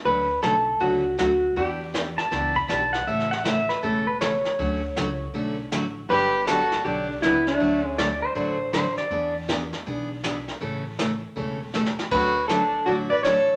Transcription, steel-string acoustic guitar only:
X:1
M:4/4
L:1/16
Q:"Swing" 1/4=159
K:D
V:1 name="Steel-string acoustic guitar"
[D,F,A,CF]2 z2 [D,F,A,CF] z3 [D,F,A,CF]2 z2 [D,F,A,CF] z3 | [E,B,DG]2 z2 [E,B,DG] z3 [E,B,DG]2 z2 [E,B,DG] z3 | [C,E,A,CA]2 z2 [C,E,A,CA] z3 [C,E,A,CA]2 z2 [C,E,A,CA] z3 | [D,F,A,CF]2 z2 [D,F,A,CF] z3 [D,F,A,CF]2 z2 [D,F,A,CF] z3 |
[D,F,B,DG]2 z2 [D,F,B,DG] z3 [D,F,B,DG]2 z2 [D,F,B,DG] z3 | [D,F,A,DF]2 z2 [D,F,A,DF] z3 [D,F,A,DF]2 z2 [D,F,A,DF] z3 | [E,B,D^G]2 z2 [E,B,DG] z3 [E,B,DG]2 z2 [E,B,DG] z3 | [C,E,A,CA]2 z2 [C,E,A,CA] z3 [C,E,A,CA]2 z2 [C,E,A,CA] z3 |
[D,F,A,CF]2 z2 [D,F,A,CF] z3 [D,F,A,CF]2 z2 [D,F,A,CF] z3 |]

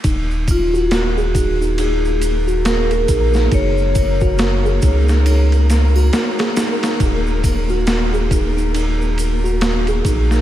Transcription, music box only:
X:1
M:4/4
L:1/16
Q:"Swing 16ths" 1/4=69
K:Ebm
V:1 name="Music box"
E3 G B A E E E3 G B A E E | E3 G B A E E E3 G B A E E | E3 G B A E E E3 G B A E E |]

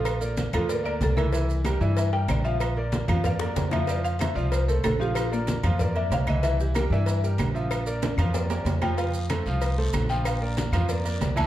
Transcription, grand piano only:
X:1
M:4/4
L:1/8
Q:1/4=188
K:Bblyd
V:1 name="Grand piano"
[F,Ff] [B,Bd]2 [F,Ff] [B,Bd] [B,Bd]2 [E,Ee] | [E,Ee]2 [G,GB] [E,Ee]2 [G,GB]2 [F,Ff]- | [F,Ff] [B,Bd]2 [F,Ff] [B,Bd] [B,Bd]2 [F,Ff] | [F,Ff]2 [A,Ac] [F,Ff]2 [A,Ac]2 [F,Ff]- |
[F,Ff] [B,Bd]2 [F,Ff] [B,Bd] [B,Bd]2 [E,Ee] | [E,Ee]2 [G,GB] [E,Ee]2 [G,GB]2 [F,Fe]- | [F,Fe] [B,Bd]2 [F,Ff] [B,Bd] [B,Bd]2 [F,Ff] | [F,Ff]2 [A,Ac] [F,Ff]2 [A,Ac]2 [F,Ff]- |
[F,Ff] [B,Bd]2 [F,Ff] [B,Bd] [B,Bd]2 [E,Ee] |]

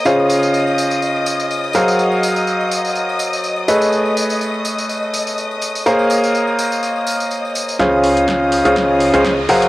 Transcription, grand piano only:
X:1
M:4/4
L:1/16
Q:"Swing 16ths" 1/4=124
K:Db
V:1 name="Grand piano"
[D,FAcdf]12- [D,FAcdf]2 [G,GABcf]2- | [G,GABcf]12- [G,GABcf]2 [=A,^G=A=B^c^d]2- | [=A,^G=A=B^c^d]16 | [B,ABcdf]16 |
[D,FAcdf]6- [D,FAcdf] [D,FAcdf]4 [D,FAcdf] z2 [G,GABcf]2 |]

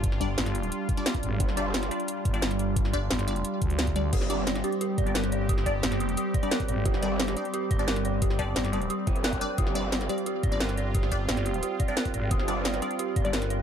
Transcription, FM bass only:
X:1
M:4/4
L:1/8
Q:1/4=176
K:Cm
V:1 name="FM bass" clef=bass
G,,,2 G,,,2 z3 A,,, | z4 z G,,,3- | G,,,2 G,,,2 z D,,3 | z4 z G,,,3- |
G,,,2 G,,,2 z3 A,,, | z4 z G,,,3- | G,,,2 G,,,2 z4 | z4 z G,,,3- |
G,,,2 G,,,2 z3 A,,, | z4 z G,,,3 |]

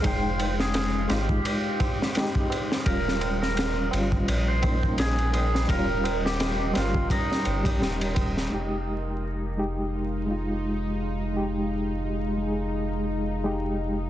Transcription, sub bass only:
X:1
M:4/4
L:1/16
Q:"Swing 16ths" 1/4=85
K:Fm
V:1 name="Sub bass" clef=bass
F,,,6 A,,,2 z8 | E,,,6 G,,,2 B,,,8 | E,,,6 G,,,2 z2 G,,, B,,, E,,,4 | F,,,16- |
F,,,16 |]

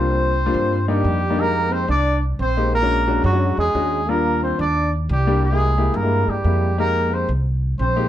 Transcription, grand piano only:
X:1
M:4/4
L:1/16
Q:1/4=178
K:Fdor
V:1 name="Grand piano"
[G,B,DF]3 z2 [G,B,DF]3 z2 [G,B,DE]4 z [G,B,DE] | [A,B,EG]6 z8 [A,B,EG]2 | z [A,^CD^F]2 z [A,CDF]2 z [A,CDF]3 z2 [A,CDF]3 z | [G,B,DF]6 z8 [G,B,DG]2 |
z [A,B,=EG]2 z [A,B,EG]2 z [A,B,EG]3 z2 [A,B,EG]3 z | [A,B,EG]6 z8 [A,B,EG]2 |]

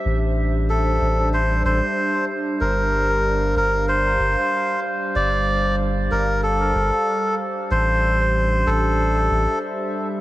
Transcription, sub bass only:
X:1
M:4/4
L:1/8
Q:"Swing 16ths" 1/4=94
K:Gdor
V:1 name="Sub bass" clef=bass
A,,,3 A,,,2 A,,, z2 | G,,,3 G,,,2 G,,, z2 | G,,,3 G,,,2 G,,, z2 | A,,,3 A,,,2 A,,, z2 |]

